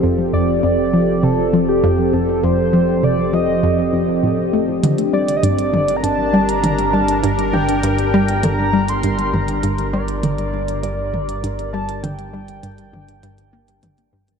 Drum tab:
HH |----------------|----------------|xx-xxx-xx--xxx-x|xx-xxx-xx--xxx-x|
T1 |----------------|----------------|o-----o-----o---|--o-----o-----o-|

HH |xx-xxx-xx--xxx-x|xx-xxx-xxx-xxx-x|
T1 |----o-----o-----|o-----o-----o---|